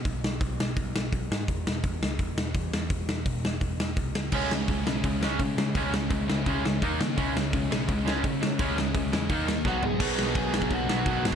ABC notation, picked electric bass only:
X:1
M:4/4
L:1/8
Q:1/4=169
K:C#dor
V:1 name="Picked electric bass" clef=bass
B,,, B,,, B,,, B,,, B,,, B,,, B,,, G,, | E,,, E,,, E,,, C,, E,,, E,,, E,, E,, | E,,, E,,, E,,, E,,, E,,, E,,, ^B,,, C,, | C,, C,, C,, B,,, C,, C,, C, C, |
C,, C,, C,, C,, C,, C,, D,, C, | C,, C,, C,, B,,, C,, C,, C, C, | C,, C,, C,, E,, D,, D,, B,,, G,, | B,,, B,,, B,,,2 B,,, B,,, B,,, G,,, |]